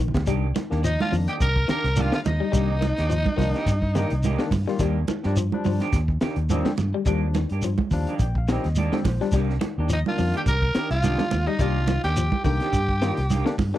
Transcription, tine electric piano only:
0.15 0.20 G3 medium
0.15 0.20 A#3 medium
0.70 0.80 D#3 medium
0.70 0.80 A#3 medium
0.70 0.81 D4 medium
1.00 1.35 D#3 medium
1.00 1.35 A#3 medium
1.00 1.36 D4 medium
1.96 2.18 D#3 medium
1.96 2.18 A#3 medium
1.96 2.18 D4 medium
2.54 2.84 D#3 medium
2.54 2.85 A#3 medium
2.54 2.85 D#4 medium
3.36 3.59 D#3 medium
3.36 3.59 A#3 medium
3.36 3.60 D4 loud
3.96 4.12 D#3 medium
3.96 4.13 A#3 medium
3.96 4.13 D#4 loud
4.40 4.49 D#3 medium
4.40 4.49 A#3 medium
4.40 4.49 D4 loud
4.67 4.80 D#3 loud
4.67 4.81 A#3 medium
4.67 4.81 F4 loud
5.25 5.34 F3 medium
5.25 5.35 G3 medium
5.25 5.35 D4 loud
5.53 5.87 F3 medium
5.53 5.88 G3 medium
5.53 5.88 D4 loud
6.50 6.71 F3 loud
6.50 6.72 G3 medium
6.50 6.72 C4 loud
7.08 7.38 F3 medium
7.08 7.38 G3 medium
7.08 7.38 D4 medium
7.92 8.13 F3 medium
7.92 8.14 G3 medium
7.92 8.14 D4 loud
7.92 8.19 F5 medium
8.22 8.36 G5 medium
8.38 8.49 F5 medium
8.51 8.66 F3 medium
8.51 8.67 G3 medium
8.51 8.67 C4 loud
8.51 8.77 D#5 medium
8.78 9.04 D5 medium
8.93 9.02 F3 medium
8.93 9.03 G3 medium
8.93 9.02 C4 loud
9.06 9.32 C5 medium
9.20 9.33 F3 medium
9.20 9.34 G3 medium
9.20 9.34 D4 loud
9.79 9.87 D#3 medium
9.79 9.88 A#3 medium
9.79 9.88 D4 medium
10.07 10.41 D#3 medium
10.07 10.42 A#3 medium
10.07 10.41 D4 medium
11.04 11.25 D#3 medium
11.04 11.25 A#3 medium
11.04 11.26 D4 medium
11.60 11.90 D#3 medium
11.60 11.91 A#3 medium
11.60 11.91 D4 medium
12.44 12.66 D#3 medium
12.44 12.66 A#3 medium
12.44 12.66 D#4 medium
13.02 13.18 D#3 medium
13.02 13.19 A#3 medium
13.02 13.19 F4 medium
13.45 13.54 D#3 medium
13.45 13.55 A#3 medium
13.45 13.55 D4 loud
13.74 13.78 D#3 medium
13.74 13.78 A#3 medium

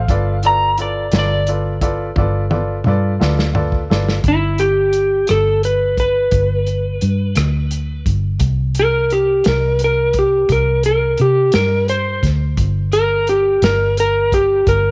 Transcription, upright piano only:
0.09 0.35 F4 medium
0.09 0.35 A4 medium
0.09 0.35 B4 medium
0.09 0.36 D5 medium
0.43 0.69 F4 soft
0.43 0.70 A4 soft
0.43 0.70 B4 soft
0.43 0.70 D5 soft
0.78 1.04 F4 soft
0.78 1.04 A4 soft
0.78 1.05 B4 soft
0.78 1.05 D5 soft
1.12 1.38 F4 soft
1.12 1.39 A4 soft
1.12 1.39 B4 soft
1.12 1.40 D5 medium
1.48 1.74 F4 soft
1.48 1.74 A4 soft
1.48 1.74 B4 soft
1.48 1.74 D5 soft
1.81 2.08 F4 medium
1.81 2.08 A4 soft
1.81 2.08 B4 medium
1.81 2.08 D5 medium
2.17 2.43 F4 medium
2.17 2.43 A4 medium
2.17 2.44 B4 soft
2.17 2.43 D5 medium
2.50 2.77 F4 medium
2.50 2.77 A4 soft
2.50 2.77 B4 soft
2.50 2.77 D5 medium
2.86 3.12 F4 medium
2.86 3.12 A4 medium
2.86 3.12 B4 medium
2.86 3.13 D5 medium
3.20 3.46 F4 medium
3.20 3.47 A4 soft
3.20 3.47 B4 medium
3.20 3.47 D5 medium
3.53 3.80 F4 medium
3.53 3.81 A4 medium
3.53 3.81 B4 soft
3.53 3.81 D5 medium
3.90 4.16 F4 medium
3.90 4.16 A4 soft
3.90 4.17 B4 soft
3.90 4.17 D5 medium

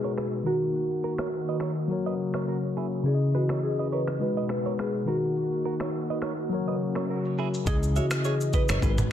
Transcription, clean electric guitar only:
0.04 0.12 A#4 medium
0.04 0.11 C#5 medium
0.17 0.27 G#4 medium
0.17 0.26 B4 medium
0.46 0.55 F#4 medium
0.46 0.55 A#4 medium
1.04 1.13 F#4 medium
1.04 1.13 A#4 medium
1.20 1.27 A#4 medium
1.20 1.27 C#5 medium
1.49 1.56 B4 medium
1.49 1.56 D#5 medium
1.62 1.71 A#4 medium
1.62 1.70 C#5 medium
2.06 2.14 B4 medium
2.06 2.13 D#5 medium
2.35 2.43 A#4 medium
2.35 2.42 C#5 medium
2.48 2.57 F#4 medium
2.48 2.57 A#4 medium
2.77 2.86 E4 medium
2.77 2.86 G#4 medium
3.35 3.44 G#4 medium
3.35 3.43 B4 medium
3.50 3.58 A#4 medium
3.50 3.58 C#5 medium
3.79 3.87 B4 medium
3.79 3.86 D#5 medium
3.92 4.02 A#4 medium
3.92 4.01 C#5 medium
4.37 4.45 B4 medium
4.37 4.44 D#5 medium
4.66 4.74 A#4 medium
4.66 4.73 C#5 medium
4.79 4.88 G#4 medium
4.79 4.88 B4 medium
5.08 5.17 F#4 medium
5.08 5.16 A#4 medium
5.65 5.75 F#4 medium
5.65 5.74 A#4 medium
5.81 5.89 A#4 medium
5.81 5.88 C#5 medium
6.10 6.18 B4 medium
6.10 6.17 D#5 medium
6.23 6.32 A#4 medium
6.23 6.32 C#5 medium
6.68 6.75 B4 medium
6.68 6.75 D#5 medium
6.97 7.04 A#4 medium
6.97 7.04 C#5 medium
7.10 7.19 F#4 medium
7.10 7.18 A#4 medium
7.39 7.48 E4 medium
7.39 7.47 G#4 medium
7.67 7.77 G#4 medium
7.67 7.76 D#5 medium
7.96 8.05 C#5 medium
7.96 8.05 E5 medium
8.25 8.34 G#4 medium
8.25 8.34 C#5 medium
8.54 8.63 B4 medium
8.54 8.63 D#5 medium
8.70 8.77 A#4 medium
8.70 8.77 C#5 medium
8.83 8.92 G#4 medium
8.83 8.91 B4 medium

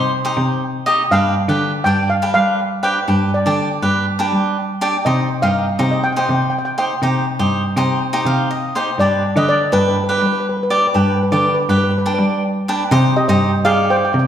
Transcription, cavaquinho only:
0.00 0.11 D#4 medium
0.00 0.11 G4 medium
0.00 0.11 C5 medium
0.25 0.62 D#4 medium
0.25 0.62 G4 medium
0.25 0.62 C5 medium
0.86 1.02 D#4 medium
0.86 1.02 G4 medium
0.86 1.02 D#5 medium
1.12 1.34 D4 medium
1.12 1.34 G4 medium
1.12 1.34 B4 medium
1.49 1.71 D4 medium
1.49 1.71 G4 medium
1.49 1.71 B4 medium
1.86 2.08 D4 medium
1.86 2.08 G4 medium
1.86 2.08 D5 medium
2.22 2.59 D4 medium
2.22 2.59 G4 medium
2.22 2.60 B4 medium
2.83 2.99 D4 medium
2.83 2.99 G4 medium
2.83 2.99 B4 medium
3.08 3.31 D4 medium
3.08 3.30 G4 medium
3.08 3.31 B4 medium
3.46 3.68 D4 medium
3.46 3.68 G4 medium
3.46 3.68 D5 medium
3.82 4.05 D4 medium
3.82 4.05 G4 medium
3.82 4.05 B4 medium
4.19 4.56 D4 medium
4.19 4.56 G4 medium
4.19 4.56 B4 medium
4.81 4.96 D4 medium
4.81 4.96 G4 medium
4.81 4.96 D5 medium
5.06 5.28 D#4 medium
5.06 5.28 G4 medium
5.06 5.28 C5 medium
5.43 5.65 D#4 medium
5.43 5.65 G4 medium
5.43 5.65 D#5 medium
5.79 6.01 D#4 medium
5.79 6.02 G4 medium
5.79 6.01 C5 medium
6.16 6.53 D#4 medium
6.16 6.53 G4 medium
6.16 6.53 C5 medium
6.78 6.93 D#4 medium
6.78 6.93 G4 medium
6.78 6.93 C5 medium
7.03 7.25 D#4 medium
7.03 7.25 G4 medium
7.03 7.25 C5 medium
7.39 7.61 D#4 medium
7.39 7.61 G4 medium
7.39 7.62 C5 medium
7.77 7.99 D#4 medium
7.77 7.99 G4 medium
7.77 7.99 C5 medium
8.13 8.50 D#4 medium
8.13 8.50 G4 medium
8.13 8.50 C5 medium
8.26 8.49 F5 medium
8.51 8.73 D#5 medium
8.75 8.90 D#4 medium
8.75 8.90 G4 medium
8.75 8.98 C5 medium
9.00 9.22 D4 medium
9.00 9.22 G4 soft
9.00 9.22 B4 medium
9.37 9.58 D4 medium
9.37 9.58 G4 medium
9.37 9.58 B4 medium
9.72 9.95 D4 medium
9.72 9.95 G4 medium
9.72 9.95 B4 medium
10.09 10.46 D4 medium
10.09 10.46 G4 medium
10.09 10.46 B4 medium
10.70 10.85 D4 medium
10.70 10.85 G4 medium
10.70 10.86 D5 medium
10.94 11.17 D4 medium
10.94 11.17 G4 soft
10.94 11.17 B4 medium
11.32 11.54 D4 medium
11.32 11.54 G4 medium
11.32 11.54 D5 medium
11.69 11.91 D4 medium
11.69 11.92 G4 medium
11.69 11.91 B4 medium
12.06 12.43 D4 medium
12.06 12.43 G4 medium
12.06 12.42 D5 medium
12.68 12.83 D4 medium
12.68 12.83 G4 medium
12.68 12.83 B4 medium
12.91 13.14 D#4 medium
12.91 13.14 G4 medium
12.91 13.14 C5 medium
13.29 13.51 D#4 medium
13.29 13.51 G4 medium
13.29 13.51 C5 medium
13.65 14.17 D#4 medium
13.65 14.16 G4 medium
13.65 14.16 D5 medium

